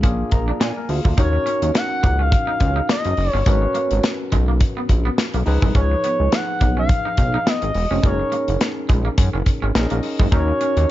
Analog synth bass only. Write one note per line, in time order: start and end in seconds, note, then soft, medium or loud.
0.03 0.24 A#1 medium
0.32 0.52 A#1 medium
0.60 0.72 A#2 loud
0.89 1.00 D2 loud
1.05 1.14 D2 medium
1.18 1.38 D#2 loud
1.62 1.71 D#2 loud
2.04 2.35 C#2 medium
2.61 2.81 C#2 medium
3.05 3.14 F#1 medium
3.18 3.29 F#1 medium
3.34 3.43 G1 medium
3.46 3.67 G#1 loud
3.91 4.00 G#1 loud
4.32 4.64 B1 medium
4.89 5.10 A#1 medium
5.34 5.43 B1 loud
5.47 5.58 C#2 loud
5.62 5.71 C2 medium
5.75 5.95 C#2 loud
6.20 6.29 C#2 medium
6.61 6.93 B1 medium
7.18 7.38 B1 loud
7.63 7.72 G#1 medium
7.75 7.87 E1 loud
7.91 8.00 F1 loud
8.03 8.24 F#1 loud
8.48 8.57 F#1 medium
8.89 9.10 A#1 medium
9.18 9.29 F#2 medium
9.34 9.43 F#1 loud
9.63 9.72 G#1 medium
9.75 9.87 A#1 loud
9.92 10.00 A#1 medium
10.20 10.28 F#1 medium
10.32 10.52 D#2 loud
10.77 10.86 D#2 loud